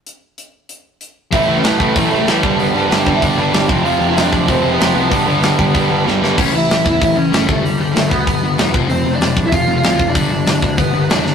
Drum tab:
CC |--------|--------|--------|--------|
HH |x-x-x-x-|o-o-o-o-|o-o-o-o-|o-o-o-o-|
SD |--------|--o---o-|--o---o-|--o---o-|
BD |--------|o--oo--o|---oo--o|---oo---|

CC |--------|x-------|--------|--------|
HH |o-o-o---|--o-o-o-|o-o-o-o-|o-o-o-o-|
SD |--o---oo|--o---o-|--o---o-|--o---o-|
BD |o--oo---|o--oo--o|---oo--o|---oo--o|

CC |--------|
HH |o-o-o-o-|
SD |--o---oo|
BD |o--oo---|